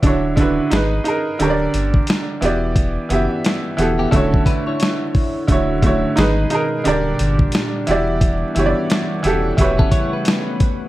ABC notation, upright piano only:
X:1
M:4/4
L:1/16
Q:"Swing 16ths" 1/4=88
K:D
V:1 name="Upright piano"
[D,DEFc]2 [D,DEFB]2 [^D^GB]2 [DG_B]2 [=D,=D=GBcd]4 z2 [E,=B,FGd]2- | [E,B,FGd]2 [E,B,FGe]3 z [E,B,FGA]2 [D,A,EFc]6 z2 | [D,A,EFc]2 [D,A,EFc]2 [^D^GB]2 [DG_B]2 [=D,=D=GBd]4 z2 [E,EFGd]2- | [E,EFGd]2 [E,EFGcd]3 z [E,EFGA]2 [E,EFGBc]6 z2 |]